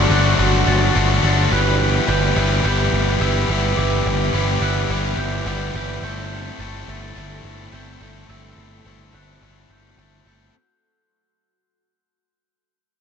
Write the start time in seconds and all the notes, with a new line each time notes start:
Already playing: A3 D4 F#4 C5 D5 C6 D6
0.09 G1 D3 F#3 A3 D4 F#4 C5 F#6
0.38 G1 D3 F#3 A3 D4 F#4 C5
0.67 G1 A6
0.94 G1 D3 F#3 A3 D4 F#4 C5
1.23 G1 D3 F#3 A3 D4 F#4 C5 A6
1.51 G1 G3 B3 E4 G4 B4 E5 D6 F#6
2.08 G1 G3 B3 E4 G4 B4 G6
2.36 G1 G3 B3 E4 G4 B4
2.64 G1 G3 B3 E4 G4 B4 G6
2.92 G1
3.20 G1 G3 B3 E4 G4 B4 E6
3.49 G1 G3 B3 E4 G4 B4
3.77 G1 G3 B3 E4 G4 B4 D6 E6
4.05 G1 D6
4.33 G1 G3 B3 E4 G4 B4
4.61 G1 G3 B3 E4 G4 B4 F#6
4.89 G1 G3 B3 E4 G4 B4
5.17 G1 G6
5.45 G1 G3 B3 E4 G4 B4
5.74 G1 G3 B3 E4 G4 B4 G6
6.02 G1 A3 C4 E4 A4 G5 C6 G6
6.59 G1 A3 C4 E4 A4 A6
6.88 G1 A3 C4 E4 A4
7.16 G1 A3 C4 E4 A4 A6
7.44 G1
7.72 G1 A3 C4 E4 A4 G6
8.01 G1 A3 C4 E4 A4
8.29 G1 A3 C4 E4 F#4 A4 E6
8.57 G1
8.85 G1 A3 C4 E4 A4
9.12 G1 A3 C4 E4 A4 F#6
9.42 G1 A3 C4 E4 A4
9.69 G1 G6
9.97 G1 A3 C4 E4 A4
10.25 G1 A3 C4 E4 A4 G6